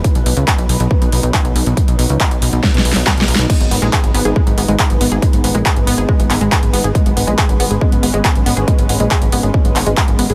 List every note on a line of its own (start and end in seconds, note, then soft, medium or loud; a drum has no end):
0.00 3.46 B4 medium
0.04 3.46 F#3 medium
0.04 10.34 B3 medium
0.04 6.91 D#4 medium
0.04 kick loud
0.04 closed hi-hat medium
0.15 0.23 B1 medium
0.15 closed hi-hat medium
0.26 0.34 B1 loud
0.26 open hi-hat medium
0.37 0.45 C#2 loud
0.37 closed hi-hat medium
0.48 kick loud
0.48 clap loud
0.48 closed hi-hat medium
0.58 0.66 B1 medium
0.58 closed hi-hat medium
0.69 0.77 B1 loud
0.69 open hi-hat loud
0.80 0.88 B1 medium
0.80 closed hi-hat medium
0.91 kick loud
1.02 1.10 B1 medium
1.02 closed hi-hat soft
1.12 1.20 B1 loud
1.12 open hi-hat medium
1.23 1.31 B1 medium
1.23 closed hi-hat medium
1.34 kick loud
1.34 clap loud
1.34 closed hi-hat medium
1.45 1.53 B1 medium
1.45 closed hi-hat soft
1.56 1.64 B1 loud
1.56 open hi-hat loud
1.66 1.74 B1 medium
1.66 closed hi-hat medium
1.77 kick loud
1.77 closed hi-hat medium
1.88 1.96 B1 medium
1.88 closed hi-hat medium
1.99 2.07 B1 loud
1.99 open hi-hat loud
2.10 2.18 C#2 medium
2.10 closed hi-hat medium
2.20 kick loud
2.20 clap loud
2.20 closed hi-hat medium
2.31 2.39 B1 medium
2.31 closed hi-hat medium
2.42 2.50 B1 loud
2.42 open hi-hat loud
2.53 2.61 B1 medium
2.53 closed hi-hat medium
2.63 kick loud
2.63 snare medium
2.74 2.82 B1 medium
2.74 snare medium
2.74 closed hi-hat medium
2.85 2.93 B1 medium
2.85 open hi-hat loud
2.92 3.04 B1 medium
2.92 snare medium
2.92 open hi-hat medium
3.07 kick loud
3.07 snare medium
3.07 clap loud
3.07 closed hi-hat medium
3.17 3.25 B1 medium
3.17 snare medium
3.17 closed hi-hat medium
3.28 3.36 B1 loud
3.28 open hi-hat loud
3.35 3.47 B1 medium
3.35 snare loud
3.35 closed hi-hat medium
3.50 3.57 G#3 medium
3.50 10.34 G#3 medium
3.50 10.34 B4 medium
3.50 kick loud
3.50 closed hi-hat medium
3.50 crash medium
3.61 3.69 G#1 medium
3.61 closed hi-hat medium
3.71 3.79 G#1 medium
3.71 3.76 B3 medium
3.71 open hi-hat loud
3.82 3.90 A#1 medium
3.82 3.85 G#3 loud
3.82 closed hi-hat medium
3.93 3.98 G#4 medium
3.93 kick loud
3.93 clap loud
3.93 closed hi-hat medium
4.04 4.12 G#1 medium
4.04 closed hi-hat medium
4.14 4.22 G#1 loud
4.14 4.19 B3 loud
4.14 open hi-hat loud
4.25 4.33 G#1 medium
4.25 4.30 G#4 medium
4.25 closed hi-hat medium
4.36 4.43 G#3 medium
4.36 kick loud
4.47 4.55 G#1 medium
4.47 closed hi-hat medium
4.58 4.66 G#1 loud
4.58 4.63 B3 medium
4.58 open hi-hat loud
4.68 4.76 G#1 medium
4.68 4.71 G#3 medium
4.68 closed hi-hat medium
4.79 4.84 G#4 medium
4.79 kick loud
4.79 clap loud
4.79 closed hi-hat medium
4.90 4.98 G#1 medium
4.90 closed hi-hat medium
5.01 5.09 G#1 loud
5.01 5.06 B3 loud
5.01 open hi-hat loud
5.12 5.20 G#1 medium
5.12 5.16 G#4 medium
5.12 closed hi-hat medium
5.22 5.30 G#3 medium
5.22 kick loud
5.22 closed hi-hat medium
5.33 5.41 G#1 medium
5.33 closed hi-hat medium
5.44 5.52 G#1 loud
5.44 5.49 B3 medium
5.44 open hi-hat loud
5.55 5.63 A#1 medium
5.55 5.58 G#3 loud
5.55 closed hi-hat medium
5.66 5.70 G#4 medium
5.66 kick loud
5.66 clap loud
5.66 closed hi-hat medium
5.76 5.84 G#1 medium
5.76 closed hi-hat medium
5.87 5.95 G#1 loud
5.87 5.92 B3 loud
5.87 open hi-hat loud
5.98 6.06 G#1 medium
5.98 6.03 G#4 medium
5.98 closed hi-hat soft
6.09 6.16 G#3 medium
6.09 kick loud
6.20 6.28 G#1 medium
6.20 closed hi-hat medium
6.30 6.38 G#1 loud
6.30 6.35 B3 medium
6.30 clap medium
6.30 open hi-hat loud
6.41 6.49 G#1 medium
6.41 6.44 G#3 loud
6.41 closed hi-hat soft
6.52 6.57 G#4 medium
6.52 kick loud
6.52 clap loud
6.52 closed hi-hat medium
6.63 6.71 G#1 medium
6.63 closed hi-hat medium
6.73 6.81 G#1 loud
6.73 6.78 B3 loud
6.73 open hi-hat loud
6.84 6.92 G#1 medium
6.84 6.89 G#4 medium
6.84 closed hi-hat medium
6.95 7.02 G#3 medium
6.95 10.34 C#4 medium
6.95 kick loud
6.95 closed hi-hat medium
7.06 7.14 G#1 medium
7.06 closed hi-hat medium
7.17 7.25 G#1 loud
7.17 7.21 B3 medium
7.17 open hi-hat loud
7.27 7.35 A#1 medium
7.27 7.30 G#3 loud
7.27 closed hi-hat soft
7.38 7.43 G#4 medium
7.38 kick loud
7.38 clap loud
7.38 closed hi-hat medium
7.49 7.57 G#1 medium
7.49 closed hi-hat medium
7.60 7.68 G#1 loud
7.60 7.65 B3 loud
7.60 open hi-hat loud
7.71 7.79 G#1 medium
7.71 7.75 G#4 medium
7.71 closed hi-hat soft
7.81 7.89 G#3 medium
7.81 kick loud
7.92 8.00 G#1 medium
7.92 closed hi-hat soft
8.03 8.11 G#1 loud
8.03 8.08 B3 medium
8.03 open hi-hat loud
8.14 8.22 G#1 medium
8.14 8.17 G#3 loud
8.14 closed hi-hat soft
8.25 8.29 G#4 medium
8.25 kick loud
8.25 clap loud
8.25 closed hi-hat medium
8.35 8.43 G#1 medium
8.35 closed hi-hat soft
8.46 8.54 G#1 loud
8.46 8.51 B3 loud
8.46 open hi-hat loud
8.57 8.65 G#1 medium
8.57 8.62 G#4 medium
8.57 closed hi-hat soft
8.68 8.75 G#3 medium
8.68 kick loud
8.68 closed hi-hat medium
8.79 8.87 G#1 medium
8.79 closed hi-hat soft
8.89 8.97 G#1 loud
8.89 8.94 B3 medium
8.89 open hi-hat loud
9.00 9.08 A#1 medium
9.00 9.03 G#3 loud
9.00 closed hi-hat soft
9.11 9.16 G#4 medium
9.11 kick loud
9.11 clap loud
9.11 closed hi-hat medium
9.22 9.30 G#1 medium
9.22 closed hi-hat medium
9.32 9.41 G#1 loud
9.32 9.37 B3 loud
9.32 open hi-hat loud
9.43 9.51 G#1 medium
9.43 9.48 G#4 medium
9.43 closed hi-hat soft
9.54 9.61 G#3 medium
9.54 kick loud
9.65 9.73 G#1 medium
9.65 closed hi-hat soft
9.76 9.84 G#1 loud
9.76 9.81 B3 medium
9.76 clap medium
9.76 open hi-hat loud
9.86 9.95 G#1 medium
9.86 9.89 G#3 loud
9.86 closed hi-hat soft
9.97 10.02 G#4 medium
9.97 kick loud
9.97 clap loud
9.97 closed hi-hat medium
10.08 10.16 G#1 medium
10.08 closed hi-hat soft
10.19 10.27 G#1 loud
10.19 10.24 B3 loud
10.19 open hi-hat loud
10.30 10.34 G#1 medium
10.30 10.34 G#4 medium
10.30 closed hi-hat medium